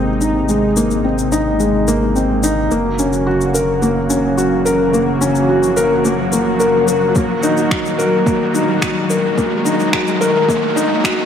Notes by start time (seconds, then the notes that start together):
Already playing: G#1 C3 G#3 A#3 C4 D#4, riser
0.21 D#4, shaker
0.49 G#3, shaker
0.77 A#3, shaker
0.91 shaker
1.04 C4
1.18 shaker
1.32 D#4, shaker
1.60 G#3, shaker
1.88 A#3, shaker
2.16 C4, shaker
2.43 D#4, shaker
2.71 F#1 C#3 F#3 A#3 F#4, shaker
2.99 C#4, shaker
3.13 shaker
3.27 F#4
3.41 shaker
3.54 A#4, shaker
3.82 A#3, shaker
4.10 C#4, shaker
4.38 F#4, shaker
4.65 A#4, shaker
4.94 A#3, shaker
5.21 C#4, shaker
5.35 shaker
5.49 F#4
5.63 shaker
5.77 A#4, shaker
6.05 A#3, shaker
6.32 A#3, shaker
6.60 A#4, shaker
6.88 A#4, shaker
7.15 D#1 D#3 A#3, kick, shaker
7.43 D#4, shaker
7.57 shaker
7.71 F#4, finger snap, kick
7.85 shaker
7.98 A#4, shaker
8.26 A#3, kick, shaker
8.54 D#4, shaker
8.82 F#4, finger snap, kick, shaker
9.10 A#4, shaker
9.38 A#3, kick, shaker
9.65 D#4, shaker
9.80 shaker
9.93 F#4, finger snap, kick
10.07 shaker
10.21 A#4, shaker
10.48 A#3, kick, shaker
10.76 D#4, shaker
11.04 F#4, finger snap, kick, shaker